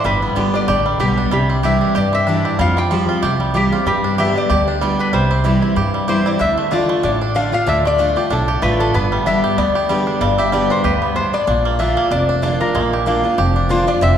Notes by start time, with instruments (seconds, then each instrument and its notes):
Already playing: five-string banjo D4
0.04 upright bass G1, steel-string acoustic guitar G2, five-string banjo G3, resonator guitar played with a steel bar B4
0.22 five-string banjo B3
0.36 upright bass G1, steel-string acoustic guitar D3 G3 B3 G4, five-string banjo D3
0.54 five-string banjo D4, resonator guitar played with a steel bar D5
0.68 upright bass A1, steel-string acoustic guitar D3, five-string banjo G4, resonator guitar played with a steel bar D5
0.86 five-string banjo G3
0.99 upright bass B1, steel-string acoustic guitar D3 G3 B3 G4, five-string banjo G4, resonator guitar played with a steel bar G4
1.17 five-string banjo D4
1.31 upright bass C2, steel-string acoustic guitar C3, five-string banjo G3, resonator guitar played with a steel bar G4
1.50 five-string banjo C4
1.63 steel-string acoustic guitar E3 G3 D4 E4, five-string banjo G4, resonator guitar played with a steel bar E5
1.81 five-string banjo D4
1.95 upright bass G2, steel-string acoustic guitar G2, five-string banjo G4, resonator guitar played with a steel bar D5
2.13 five-string banjo C4, resonator guitar played with a steel bar E5
2.27 steel-string acoustic guitar E3 G3 D4 E4, five-string banjo D4
2.45 five-string banjo G4
2.59 upright bass F2, steel-string acoustic guitar F3, five-string banjo G3, resonator guitar played with a steel bar F5
2.77 five-string banjo C4, resonator guitar played with a steel bar G5
2.91 five-string banjo F3, steel-string acoustic guitar F3 G3 C4 G4
3.09 five-string banjo F4
3.22 upright bass C2, steel-string acoustic guitar C3, five-string banjo G4, resonator guitar played with a steel bar G5
3.40 five-string banjo G3
3.54 steel-string acoustic guitar F3 G3 C4 G4, five-string banjo G4, resonator guitar played with a steel bar G4
3.72 steel-string acoustic guitar C4 G4, five-string banjo F4
3.86 upright bass G2, steel-string acoustic guitar G2, five-string banjo G3, resonator guitar played with a steel bar G4
4.04 five-string banjo D4
4.18 steel-string acoustic guitar D3 G3 B3 G4, five-string banjo G4, resonator guitar played with a steel bar E5
4.36 five-string banjo D4, resonator guitar played with a steel bar D5
4.50 upright bass D2, steel-string acoustic guitar D3, five-string banjo G4, resonator guitar played with a steel bar D5
4.68 five-string banjo D4
4.81 steel-string acoustic guitar D3 G3 B3 G4, five-string banjo G3
4.99 five-string banjo D4, resonator guitar played with a steel bar B4
5.13 upright bass C2, steel-string acoustic guitar C3, five-string banjo G3, resonator guitar played with a steel bar C5
5.31 five-string banjo C4
5.44 steel-string acoustic guitar E3 G3 C4 E4, five-string banjo E3
5.62 five-string banjo E4
5.76 steel-string acoustic guitar G2, upright bass G2, five-string banjo G4
5.94 five-string banjo G3
6.08 steel-string acoustic guitar E3 G3 C4 E4, five-string banjo G4, resonator guitar played with a steel bar C5
6.26 five-string banjo E4, resonator guitar played with a steel bar D5
6.39 upright bass D2, steel-string acoustic guitar D3, five-string banjo D4, resonator guitar played with a steel bar E5
6.58 five-string banjo A3
6.71 steel-string acoustic guitar D3 A3 D4 F4, five-string banjo D4, resonator guitar played with a steel bar D5
6.89 five-string banjo A3
7.03 upright bass A1, steel-string acoustic guitar A2, five-string banjo D4, resonator guitar played with a steel bar D5
7.21 five-string banjo D4
7.35 steel-string acoustic guitar D3 A3 D4 F4, five-string banjo D4, resonator guitar played with a steel bar F5
7.52 five-string banjo D4, steel-string acoustic guitar D4 F4, resonator guitar played with a steel bar F5
7.67 upright bass D2, steel-string acoustic guitar D3, five-string banjo D4, resonator guitar played with a steel bar E5
7.85 five-string banjo A3, resonator guitar played with a steel bar D5
7.98 steel-string acoustic guitar D3 A3 D4 F4, five-string banjo D4
8.16 steel-string acoustic guitar D4 F4, five-string banjo G4
8.30 upright bass B1, steel-string acoustic guitar A2, five-string banjo D4, resonator guitar played with a steel bar A4
8.48 five-string banjo G4
8.62 upright bass A1, steel-string acoustic guitar D3 A3 D4 F4, five-string banjo A3, resonator guitar played with a steel bar B4
8.80 five-string banjo D4, resonator guitar played with a steel bar A4
8.94 upright bass G1, steel-string acoustic guitar G2, five-string banjo B3, resonator guitar played with a steel bar B4
9.12 five-string banjo G3
9.26 steel-string acoustic guitar D3 G3 B3 G4, five-string banjo D4, resonator guitar played with a steel bar E5
9.44 five-string banjo G4
9.58 upright bass D2, steel-string acoustic guitar D3, five-string banjo B3, resonator guitar played with a steel bar D5
9.75 five-string banjo G4
9.89 steel-string acoustic guitar D3 G3 B3 G4, five-string banjo G3
10.07 five-string banjo D4
10.21 upright bass G1, steel-string acoustic guitar G2, five-string banjo G3, resonator guitar played with a steel bar D5
10.38 five-string banjo G4, resonator guitar played with a steel bar E5
10.52 steel-string acoustic guitar D3 G3 B3 G4, five-string banjo G3, resonator guitar played with a steel bar D5
10.70 five-string banjo D4, resonator guitar played with a steel bar C5
10.84 upright bass D2, steel-string acoustic guitar G2, five-string banjo G4, resonator guitar played with a steel bar B4
11.02 five-string banjo B3
11.16 steel-string acoustic guitar A2, five-string banjo D4, resonator guitar played with a steel bar C5
11.33 five-string banjo B3, resonator guitar played with a steel bar D5
11.47 upright bass A#1, steel-string acoustic guitar A#2, five-string banjo D4
11.65 five-string banjo A#3
11.79 steel-string acoustic guitar D3 A#3 D4 F4, five-string banjo D4, resonator guitar played with a steel bar E5
11.97 five-string banjo A#3
12.11 upright bass F1, steel-string acoustic guitar F2, five-string banjo D4, resonator guitar played with a steel bar D5
12.29 five-string banjo D4
12.42 steel-string acoustic guitar D3 A#3 D4 F4, five-string banjo D4, resonator guitar played with a steel bar D5
12.60 five-string banjo D4, steel-string acoustic guitar D4 F4, resonator guitar played with a steel bar A#4
12.75 upright bass A#1, steel-string acoustic guitar A#2, five-string banjo G#3
12.83 five-string banjo A#3
12.93 five-string banjo G4
13.06 steel-string acoustic guitar D3 A#3 D4 F4, five-string banjo A#3
13.23 five-string banjo D4, steel-string acoustic guitar D4 F4
13.38 upright bass F1, steel-string acoustic guitar F2, five-string banjo G4
13.56 five-string banjo D4
13.69 steel-string acoustic guitar D3 A#3 D4 F4, five-string banjo D4, resonator guitar played with a steel bar C5
13.87 five-string banjo D4, steel-string acoustic guitar D4 F4, resonator guitar played with a steel bar D5
14.01 upright bass F1, steel-string acoustic guitar F2, five-string banjo C4, resonator guitar played with a steel bar E5